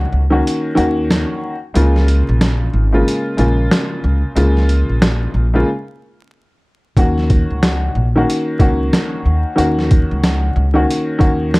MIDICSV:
0, 0, Header, 1, 4, 480
1, 0, Start_track
1, 0, Key_signature, -6, "minor"
1, 0, Tempo, 652174
1, 1289, Time_signature, 4, 2, 24, 8
1, 8535, End_track
2, 0, Start_track
2, 0, Title_t, "Upright piano"
2, 0, Program_c, 0, 0
2, 0, Note_on_c, 0, 51, 90
2, 0, Note_on_c, 0, 58, 85
2, 0, Note_on_c, 0, 61, 81
2, 0, Note_on_c, 0, 66, 107
2, 147, Note_off_c, 0, 51, 0
2, 150, Note_off_c, 0, 58, 0
2, 152, Note_off_c, 0, 61, 0
2, 155, Note_off_c, 0, 66, 0
2, 223, Note_on_c, 0, 51, 95
2, 228, Note_on_c, 0, 58, 80
2, 233, Note_on_c, 0, 61, 86
2, 238, Note_on_c, 0, 66, 99
2, 539, Note_off_c, 0, 51, 0
2, 542, Note_off_c, 0, 58, 0
2, 544, Note_off_c, 0, 61, 0
2, 546, Note_off_c, 0, 66, 0
2, 552, Note_on_c, 0, 51, 100
2, 557, Note_on_c, 0, 58, 86
2, 562, Note_on_c, 0, 61, 85
2, 566, Note_on_c, 0, 66, 107
2, 1131, Note_off_c, 0, 51, 0
2, 1134, Note_off_c, 0, 58, 0
2, 1136, Note_off_c, 0, 61, 0
2, 1138, Note_off_c, 0, 66, 0
2, 1281, Note_on_c, 0, 49, 93
2, 1287, Note_on_c, 0, 56, 82
2, 1291, Note_on_c, 0, 58, 79
2, 1296, Note_on_c, 0, 65, 96
2, 2072, Note_off_c, 0, 49, 0
2, 2074, Note_off_c, 0, 56, 0
2, 2077, Note_off_c, 0, 58, 0
2, 2079, Note_off_c, 0, 65, 0
2, 2152, Note_on_c, 0, 49, 87
2, 2156, Note_on_c, 0, 56, 81
2, 2161, Note_on_c, 0, 58, 81
2, 2166, Note_on_c, 0, 65, 97
2, 2464, Note_off_c, 0, 49, 0
2, 2466, Note_off_c, 0, 56, 0
2, 2468, Note_off_c, 0, 58, 0
2, 2471, Note_off_c, 0, 65, 0
2, 2481, Note_on_c, 0, 49, 81
2, 2486, Note_on_c, 0, 56, 82
2, 2491, Note_on_c, 0, 58, 84
2, 2495, Note_on_c, 0, 65, 100
2, 3163, Note_off_c, 0, 49, 0
2, 3165, Note_off_c, 0, 56, 0
2, 3167, Note_off_c, 0, 58, 0
2, 3170, Note_off_c, 0, 65, 0
2, 3204, Note_on_c, 0, 49, 90
2, 3209, Note_on_c, 0, 56, 84
2, 3214, Note_on_c, 0, 58, 87
2, 3219, Note_on_c, 0, 65, 104
2, 3993, Note_off_c, 0, 49, 0
2, 3996, Note_off_c, 0, 56, 0
2, 3998, Note_off_c, 0, 58, 0
2, 4000, Note_off_c, 0, 65, 0
2, 4074, Note_on_c, 0, 49, 91
2, 4079, Note_on_c, 0, 56, 83
2, 4084, Note_on_c, 0, 58, 84
2, 4088, Note_on_c, 0, 65, 100
2, 4166, Note_off_c, 0, 49, 0
2, 4169, Note_off_c, 0, 56, 0
2, 4171, Note_off_c, 0, 58, 0
2, 4173, Note_off_c, 0, 65, 0
2, 5128, Note_on_c, 0, 51, 80
2, 5133, Note_on_c, 0, 58, 83
2, 5137, Note_on_c, 0, 61, 78
2, 5142, Note_on_c, 0, 66, 104
2, 5915, Note_off_c, 0, 51, 0
2, 5918, Note_off_c, 0, 58, 0
2, 5920, Note_off_c, 0, 61, 0
2, 5922, Note_off_c, 0, 66, 0
2, 6002, Note_on_c, 0, 51, 92
2, 6007, Note_on_c, 0, 58, 86
2, 6011, Note_on_c, 0, 61, 82
2, 6017, Note_on_c, 0, 66, 98
2, 6309, Note_off_c, 0, 51, 0
2, 6311, Note_off_c, 0, 58, 0
2, 6313, Note_off_c, 0, 61, 0
2, 6316, Note_off_c, 0, 66, 0
2, 6324, Note_on_c, 0, 51, 90
2, 6328, Note_on_c, 0, 58, 92
2, 6333, Note_on_c, 0, 61, 85
2, 6338, Note_on_c, 0, 66, 103
2, 7004, Note_off_c, 0, 51, 0
2, 7006, Note_off_c, 0, 58, 0
2, 7009, Note_off_c, 0, 61, 0
2, 7011, Note_off_c, 0, 66, 0
2, 7034, Note_on_c, 0, 51, 94
2, 7039, Note_on_c, 0, 58, 83
2, 7044, Note_on_c, 0, 61, 79
2, 7048, Note_on_c, 0, 66, 102
2, 7828, Note_off_c, 0, 51, 0
2, 7830, Note_off_c, 0, 58, 0
2, 7833, Note_off_c, 0, 61, 0
2, 7835, Note_off_c, 0, 66, 0
2, 7904, Note_on_c, 0, 51, 95
2, 7908, Note_on_c, 0, 58, 84
2, 7913, Note_on_c, 0, 61, 86
2, 7917, Note_on_c, 0, 66, 101
2, 8220, Note_off_c, 0, 51, 0
2, 8222, Note_off_c, 0, 58, 0
2, 8224, Note_off_c, 0, 61, 0
2, 8226, Note_off_c, 0, 66, 0
2, 8232, Note_on_c, 0, 51, 101
2, 8236, Note_on_c, 0, 58, 87
2, 8241, Note_on_c, 0, 61, 87
2, 8246, Note_on_c, 0, 66, 102
2, 8535, Note_off_c, 0, 51, 0
2, 8535, Note_off_c, 0, 58, 0
2, 8535, Note_off_c, 0, 61, 0
2, 8535, Note_off_c, 0, 66, 0
2, 8535, End_track
3, 0, Start_track
3, 0, Title_t, "Upright bass"
3, 0, Program_c, 1, 32
3, 92, Note_on_c, 1, 37, 91
3, 297, Note_off_c, 1, 37, 0
3, 571, Note_on_c, 1, 39, 96
3, 907, Note_off_c, 1, 39, 0
3, 1292, Note_on_c, 1, 37, 102
3, 1628, Note_off_c, 1, 37, 0
3, 1683, Note_on_c, 1, 34, 93
3, 1965, Note_off_c, 1, 34, 0
3, 2012, Note_on_c, 1, 32, 89
3, 2218, Note_off_c, 1, 32, 0
3, 2491, Note_on_c, 1, 34, 89
3, 2697, Note_off_c, 1, 34, 0
3, 2972, Note_on_c, 1, 37, 97
3, 3101, Note_off_c, 1, 37, 0
3, 3211, Note_on_c, 1, 37, 105
3, 3547, Note_off_c, 1, 37, 0
3, 3602, Note_on_c, 1, 34, 86
3, 3884, Note_off_c, 1, 34, 0
3, 3931, Note_on_c, 1, 34, 88
3, 4137, Note_off_c, 1, 34, 0
3, 5129, Note_on_c, 1, 39, 109
3, 5466, Note_off_c, 1, 39, 0
3, 5523, Note_on_c, 1, 37, 82
3, 5805, Note_off_c, 1, 37, 0
3, 5852, Note_on_c, 1, 34, 92
3, 6058, Note_off_c, 1, 34, 0
3, 6328, Note_on_c, 1, 37, 85
3, 6535, Note_off_c, 1, 37, 0
3, 6811, Note_on_c, 1, 39, 85
3, 6941, Note_off_c, 1, 39, 0
3, 7051, Note_on_c, 1, 39, 106
3, 7387, Note_off_c, 1, 39, 0
3, 7443, Note_on_c, 1, 37, 93
3, 7725, Note_off_c, 1, 37, 0
3, 7772, Note_on_c, 1, 37, 96
3, 7977, Note_off_c, 1, 37, 0
3, 8249, Note_on_c, 1, 39, 95
3, 8535, Note_off_c, 1, 39, 0
3, 8535, End_track
4, 0, Start_track
4, 0, Title_t, "Drums"
4, 347, Note_on_c, 9, 42, 89
4, 421, Note_off_c, 9, 42, 0
4, 569, Note_on_c, 9, 42, 50
4, 642, Note_off_c, 9, 42, 0
4, 814, Note_on_c, 9, 38, 99
4, 823, Note_on_c, 9, 42, 73
4, 887, Note_off_c, 9, 38, 0
4, 896, Note_off_c, 9, 42, 0
4, 1292, Note_on_c, 9, 42, 78
4, 1366, Note_off_c, 9, 42, 0
4, 1443, Note_on_c, 9, 38, 35
4, 1517, Note_off_c, 9, 38, 0
4, 1532, Note_on_c, 9, 42, 49
4, 1606, Note_off_c, 9, 42, 0
4, 1773, Note_on_c, 9, 38, 123
4, 1775, Note_on_c, 9, 42, 78
4, 1847, Note_off_c, 9, 38, 0
4, 1848, Note_off_c, 9, 42, 0
4, 2267, Note_on_c, 9, 42, 90
4, 2340, Note_off_c, 9, 42, 0
4, 2489, Note_on_c, 9, 42, 49
4, 2563, Note_off_c, 9, 42, 0
4, 2734, Note_on_c, 9, 38, 97
4, 2743, Note_on_c, 9, 42, 71
4, 2807, Note_off_c, 9, 38, 0
4, 2817, Note_off_c, 9, 42, 0
4, 3212, Note_on_c, 9, 42, 76
4, 3286, Note_off_c, 9, 42, 0
4, 3363, Note_on_c, 9, 38, 35
4, 3437, Note_off_c, 9, 38, 0
4, 3452, Note_on_c, 9, 42, 51
4, 3526, Note_off_c, 9, 42, 0
4, 3694, Note_on_c, 9, 38, 126
4, 3696, Note_on_c, 9, 42, 78
4, 3768, Note_off_c, 9, 38, 0
4, 3769, Note_off_c, 9, 42, 0
4, 5128, Note_on_c, 9, 36, 115
4, 5132, Note_on_c, 9, 42, 79
4, 5201, Note_off_c, 9, 36, 0
4, 5206, Note_off_c, 9, 42, 0
4, 5283, Note_on_c, 9, 38, 36
4, 5357, Note_off_c, 9, 38, 0
4, 5372, Note_on_c, 9, 42, 50
4, 5375, Note_on_c, 9, 36, 92
4, 5446, Note_off_c, 9, 42, 0
4, 5448, Note_off_c, 9, 36, 0
4, 5613, Note_on_c, 9, 38, 123
4, 5615, Note_on_c, 9, 42, 78
4, 5687, Note_off_c, 9, 38, 0
4, 5688, Note_off_c, 9, 42, 0
4, 6107, Note_on_c, 9, 42, 92
4, 6180, Note_off_c, 9, 42, 0
4, 6328, Note_on_c, 9, 36, 90
4, 6329, Note_on_c, 9, 42, 49
4, 6401, Note_off_c, 9, 36, 0
4, 6402, Note_off_c, 9, 42, 0
4, 6574, Note_on_c, 9, 38, 101
4, 6583, Note_on_c, 9, 42, 72
4, 6647, Note_off_c, 9, 38, 0
4, 6657, Note_off_c, 9, 42, 0
4, 7052, Note_on_c, 9, 42, 77
4, 7126, Note_off_c, 9, 42, 0
4, 7202, Note_on_c, 9, 38, 36
4, 7276, Note_off_c, 9, 38, 0
4, 7292, Note_on_c, 9, 42, 51
4, 7295, Note_on_c, 9, 36, 92
4, 7365, Note_off_c, 9, 42, 0
4, 7368, Note_off_c, 9, 36, 0
4, 7533, Note_on_c, 9, 38, 119
4, 7535, Note_on_c, 9, 42, 79
4, 7607, Note_off_c, 9, 38, 0
4, 7608, Note_off_c, 9, 42, 0
4, 8026, Note_on_c, 9, 42, 91
4, 8100, Note_off_c, 9, 42, 0
4, 8247, Note_on_c, 9, 36, 90
4, 8248, Note_on_c, 9, 42, 49
4, 8321, Note_off_c, 9, 36, 0
4, 8322, Note_off_c, 9, 42, 0
4, 8494, Note_on_c, 9, 38, 99
4, 8503, Note_on_c, 9, 42, 73
4, 8535, Note_off_c, 9, 38, 0
4, 8535, Note_off_c, 9, 42, 0
4, 8535, End_track
0, 0, End_of_file